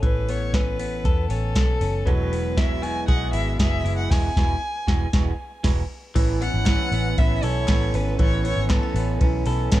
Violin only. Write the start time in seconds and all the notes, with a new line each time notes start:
0.05 B4
0.30 C#5
0.54 B4
1.29 A4
2.06 B4
2.57 E5
2.82 G#5
3.08 F#5
3.33 E5
3.60 E5
3.98 F#5
4.10 G#5
6.41 F#5
7.18 E5
7.44 C#5
7.95 B4
8.21 C#5
8.45 C#5
8.72 A4